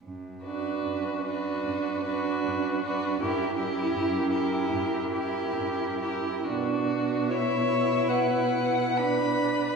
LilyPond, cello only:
\new Staff \with { instrumentName = "Cello" } { \clef bass \time 4/4 \key b \minor \tempo 4 = 74 fis,4 fis,4 fis,4 fis,4 | fis,4 fis,4 fis,4 fis,4 | b,1 | }